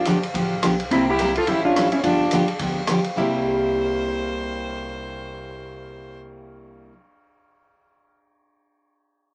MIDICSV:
0, 0, Header, 1, 6, 480
1, 0, Start_track
1, 0, Tempo, 282087
1, 1542, Time_signature, 4, 2, 24, 8
1, 15893, End_track
2, 0, Start_track
2, 0, Title_t, "Hollow-body jazz guitar"
2, 0, Program_c, 0, 26
2, 1550, Note_on_c, 0, 60, 66
2, 1575, Note_on_c, 0, 64, 88
2, 1812, Note_off_c, 0, 60, 0
2, 1840, Note_off_c, 0, 64, 0
2, 1861, Note_on_c, 0, 64, 78
2, 1880, Note_on_c, 0, 67, 101
2, 2292, Note_off_c, 0, 64, 0
2, 2303, Note_off_c, 0, 67, 0
2, 2337, Note_on_c, 0, 65, 75
2, 2348, Note_on_c, 0, 69, 95
2, 2504, Note_off_c, 0, 65, 0
2, 2521, Note_on_c, 0, 64, 78
2, 2534, Note_off_c, 0, 69, 0
2, 2534, Note_on_c, 0, 67, 102
2, 2779, Note_off_c, 0, 64, 0
2, 2802, Note_off_c, 0, 67, 0
2, 2806, Note_on_c, 0, 62, 72
2, 2809, Note_on_c, 0, 65, 92
2, 3246, Note_off_c, 0, 62, 0
2, 3265, Note_off_c, 0, 65, 0
2, 3272, Note_on_c, 0, 64, 80
2, 3280, Note_on_c, 0, 61, 67
2, 3453, Note_off_c, 0, 64, 0
2, 3455, Note_off_c, 0, 61, 0
2, 3460, Note_on_c, 0, 65, 75
2, 3478, Note_on_c, 0, 62, 64
2, 4175, Note_off_c, 0, 65, 0
2, 4184, Note_off_c, 0, 62, 0
2, 5406, Note_on_c, 0, 64, 82
2, 11720, Note_off_c, 0, 64, 0
2, 15893, End_track
3, 0, Start_track
3, 0, Title_t, "Fiddle"
3, 0, Program_c, 1, 110
3, 1599, Note_on_c, 1, 60, 78
3, 1838, Note_off_c, 1, 60, 0
3, 1891, Note_on_c, 1, 64, 81
3, 2309, Note_off_c, 1, 64, 0
3, 2366, Note_on_c, 1, 65, 87
3, 2556, Note_on_c, 1, 64, 83
3, 2582, Note_off_c, 1, 65, 0
3, 2816, Note_off_c, 1, 64, 0
3, 2843, Note_on_c, 1, 61, 73
3, 3265, Note_off_c, 1, 61, 0
3, 3305, Note_on_c, 1, 61, 68
3, 3469, Note_off_c, 1, 61, 0
3, 3509, Note_on_c, 1, 62, 70
3, 4201, Note_off_c, 1, 62, 0
3, 5397, Note_on_c, 1, 72, 84
3, 10524, Note_off_c, 1, 72, 0
3, 15893, End_track
4, 0, Start_track
4, 0, Title_t, "Steel-string acoustic guitar"
4, 0, Program_c, 2, 25
4, 107, Note_on_c, 2, 50, 76
4, 114, Note_on_c, 2, 53, 82
4, 118, Note_on_c, 2, 59, 81
4, 123, Note_on_c, 2, 62, 80
4, 136, Note_on_c, 2, 67, 82
4, 286, Note_off_c, 2, 50, 0
4, 290, Note_off_c, 2, 53, 0
4, 292, Note_off_c, 2, 59, 0
4, 295, Note_off_c, 2, 62, 0
4, 301, Note_off_c, 2, 67, 0
4, 576, Note_on_c, 2, 50, 61
4, 581, Note_on_c, 2, 53, 57
4, 591, Note_on_c, 2, 59, 61
4, 591, Note_on_c, 2, 62, 59
4, 598, Note_on_c, 2, 67, 58
4, 905, Note_off_c, 2, 50, 0
4, 907, Note_off_c, 2, 53, 0
4, 912, Note_off_c, 2, 59, 0
4, 912, Note_off_c, 2, 62, 0
4, 916, Note_off_c, 2, 67, 0
4, 1071, Note_on_c, 2, 50, 78
4, 1073, Note_on_c, 2, 53, 73
4, 1082, Note_on_c, 2, 59, 78
4, 1087, Note_on_c, 2, 67, 80
4, 1092, Note_on_c, 2, 62, 78
4, 1249, Note_off_c, 2, 50, 0
4, 1250, Note_off_c, 2, 53, 0
4, 1255, Note_off_c, 2, 59, 0
4, 1257, Note_off_c, 2, 67, 0
4, 1260, Note_off_c, 2, 62, 0
4, 1565, Note_on_c, 2, 48, 53
4, 1575, Note_on_c, 2, 58, 61
4, 1580, Note_on_c, 2, 55, 58
4, 1582, Note_on_c, 2, 64, 62
4, 1591, Note_on_c, 2, 67, 66
4, 1880, Note_off_c, 2, 48, 0
4, 1885, Note_off_c, 2, 58, 0
4, 1887, Note_off_c, 2, 55, 0
4, 1888, Note_off_c, 2, 64, 0
4, 1893, Note_off_c, 2, 67, 0
4, 2041, Note_on_c, 2, 48, 74
4, 2043, Note_on_c, 2, 55, 78
4, 2051, Note_on_c, 2, 58, 79
4, 2058, Note_on_c, 2, 64, 78
4, 2059, Note_on_c, 2, 67, 90
4, 2215, Note_off_c, 2, 48, 0
4, 2215, Note_off_c, 2, 55, 0
4, 2220, Note_off_c, 2, 58, 0
4, 2223, Note_off_c, 2, 64, 0
4, 2223, Note_off_c, 2, 67, 0
4, 2521, Note_on_c, 2, 52, 56
4, 2529, Note_on_c, 2, 55, 57
4, 2529, Note_on_c, 2, 61, 59
4, 2532, Note_on_c, 2, 64, 59
4, 2544, Note_on_c, 2, 69, 66
4, 2838, Note_off_c, 2, 52, 0
4, 2842, Note_off_c, 2, 55, 0
4, 2843, Note_off_c, 2, 61, 0
4, 2844, Note_off_c, 2, 64, 0
4, 2850, Note_off_c, 2, 69, 0
4, 3003, Note_on_c, 2, 52, 71
4, 3011, Note_on_c, 2, 55, 72
4, 3016, Note_on_c, 2, 61, 70
4, 3019, Note_on_c, 2, 64, 80
4, 3026, Note_on_c, 2, 69, 81
4, 3176, Note_off_c, 2, 52, 0
4, 3180, Note_off_c, 2, 55, 0
4, 3183, Note_off_c, 2, 61, 0
4, 3184, Note_off_c, 2, 64, 0
4, 3188, Note_off_c, 2, 69, 0
4, 3472, Note_on_c, 2, 50, 56
4, 3478, Note_on_c, 2, 53, 57
4, 3483, Note_on_c, 2, 59, 54
4, 3493, Note_on_c, 2, 62, 63
4, 3496, Note_on_c, 2, 67, 67
4, 3794, Note_off_c, 2, 50, 0
4, 3797, Note_off_c, 2, 53, 0
4, 3800, Note_off_c, 2, 59, 0
4, 3805, Note_off_c, 2, 62, 0
4, 3806, Note_off_c, 2, 67, 0
4, 3958, Note_on_c, 2, 50, 75
4, 3963, Note_on_c, 2, 53, 84
4, 3973, Note_on_c, 2, 59, 86
4, 3973, Note_on_c, 2, 62, 76
4, 3981, Note_on_c, 2, 67, 84
4, 4134, Note_off_c, 2, 50, 0
4, 4136, Note_off_c, 2, 53, 0
4, 4142, Note_off_c, 2, 59, 0
4, 4142, Note_off_c, 2, 62, 0
4, 4145, Note_off_c, 2, 67, 0
4, 4437, Note_on_c, 2, 50, 52
4, 4438, Note_on_c, 2, 53, 59
4, 4451, Note_on_c, 2, 59, 54
4, 4456, Note_on_c, 2, 62, 54
4, 4457, Note_on_c, 2, 67, 59
4, 4757, Note_off_c, 2, 50, 0
4, 4757, Note_off_c, 2, 53, 0
4, 4764, Note_off_c, 2, 59, 0
4, 4766, Note_off_c, 2, 62, 0
4, 4767, Note_off_c, 2, 67, 0
4, 4903, Note_on_c, 2, 50, 77
4, 4913, Note_on_c, 2, 53, 74
4, 4923, Note_on_c, 2, 59, 77
4, 4929, Note_on_c, 2, 62, 72
4, 4932, Note_on_c, 2, 67, 73
4, 5086, Note_off_c, 2, 50, 0
4, 5091, Note_off_c, 2, 53, 0
4, 5097, Note_off_c, 2, 59, 0
4, 5100, Note_off_c, 2, 62, 0
4, 5101, Note_off_c, 2, 67, 0
4, 5377, Note_on_c, 2, 48, 64
4, 5394, Note_on_c, 2, 55, 73
4, 5410, Note_on_c, 2, 58, 77
4, 5426, Note_on_c, 2, 64, 69
4, 5442, Note_on_c, 2, 67, 74
4, 11773, Note_off_c, 2, 48, 0
4, 11781, Note_off_c, 2, 55, 0
4, 11789, Note_off_c, 2, 58, 0
4, 11798, Note_off_c, 2, 64, 0
4, 11806, Note_off_c, 2, 67, 0
4, 15893, End_track
5, 0, Start_track
5, 0, Title_t, "Upright bass"
5, 0, Program_c, 3, 32
5, 115, Note_on_c, 3, 31, 75
5, 517, Note_off_c, 3, 31, 0
5, 587, Note_on_c, 3, 33, 79
5, 993, Note_off_c, 3, 33, 0
5, 1081, Note_on_c, 3, 35, 78
5, 1481, Note_off_c, 3, 35, 0
5, 1549, Note_on_c, 3, 36, 94
5, 2315, Note_off_c, 3, 36, 0
5, 2499, Note_on_c, 3, 33, 81
5, 3269, Note_off_c, 3, 33, 0
5, 3469, Note_on_c, 3, 31, 91
5, 4235, Note_off_c, 3, 31, 0
5, 4419, Note_on_c, 3, 38, 72
5, 5189, Note_off_c, 3, 38, 0
5, 5396, Note_on_c, 3, 36, 86
5, 11714, Note_off_c, 3, 36, 0
5, 15893, End_track
6, 0, Start_track
6, 0, Title_t, "Drums"
6, 90, Note_on_c, 9, 44, 66
6, 90, Note_on_c, 9, 51, 72
6, 261, Note_off_c, 9, 44, 0
6, 261, Note_off_c, 9, 51, 0
6, 396, Note_on_c, 9, 51, 44
6, 566, Note_off_c, 9, 51, 0
6, 584, Note_on_c, 9, 36, 33
6, 592, Note_on_c, 9, 51, 62
6, 754, Note_off_c, 9, 36, 0
6, 762, Note_off_c, 9, 51, 0
6, 1066, Note_on_c, 9, 37, 62
6, 1066, Note_on_c, 9, 44, 64
6, 1066, Note_on_c, 9, 51, 73
6, 1236, Note_off_c, 9, 37, 0
6, 1236, Note_off_c, 9, 44, 0
6, 1236, Note_off_c, 9, 51, 0
6, 1355, Note_on_c, 9, 51, 45
6, 1525, Note_off_c, 9, 51, 0
6, 1543, Note_on_c, 9, 36, 35
6, 1549, Note_on_c, 9, 51, 61
6, 1713, Note_off_c, 9, 36, 0
6, 1720, Note_off_c, 9, 51, 0
6, 2019, Note_on_c, 9, 44, 59
6, 2019, Note_on_c, 9, 51, 67
6, 2189, Note_off_c, 9, 44, 0
6, 2189, Note_off_c, 9, 51, 0
6, 2305, Note_on_c, 9, 51, 44
6, 2475, Note_off_c, 9, 51, 0
6, 2502, Note_on_c, 9, 51, 60
6, 2503, Note_on_c, 9, 36, 36
6, 2672, Note_off_c, 9, 51, 0
6, 2673, Note_off_c, 9, 36, 0
6, 2997, Note_on_c, 9, 37, 62
6, 2997, Note_on_c, 9, 44, 61
6, 2997, Note_on_c, 9, 51, 68
6, 3167, Note_off_c, 9, 37, 0
6, 3167, Note_off_c, 9, 44, 0
6, 3167, Note_off_c, 9, 51, 0
6, 3262, Note_on_c, 9, 51, 44
6, 3432, Note_off_c, 9, 51, 0
6, 3463, Note_on_c, 9, 36, 33
6, 3464, Note_on_c, 9, 51, 64
6, 3633, Note_off_c, 9, 36, 0
6, 3634, Note_off_c, 9, 51, 0
6, 3928, Note_on_c, 9, 44, 60
6, 3928, Note_on_c, 9, 51, 68
6, 4098, Note_off_c, 9, 44, 0
6, 4098, Note_off_c, 9, 51, 0
6, 4217, Note_on_c, 9, 51, 46
6, 4387, Note_off_c, 9, 51, 0
6, 4411, Note_on_c, 9, 51, 64
6, 4416, Note_on_c, 9, 36, 36
6, 4581, Note_off_c, 9, 51, 0
6, 4586, Note_off_c, 9, 36, 0
6, 4887, Note_on_c, 9, 37, 59
6, 4887, Note_on_c, 9, 44, 58
6, 4887, Note_on_c, 9, 51, 66
6, 5057, Note_off_c, 9, 37, 0
6, 5057, Note_off_c, 9, 44, 0
6, 5057, Note_off_c, 9, 51, 0
6, 5178, Note_on_c, 9, 51, 44
6, 5348, Note_off_c, 9, 51, 0
6, 15893, End_track
0, 0, End_of_file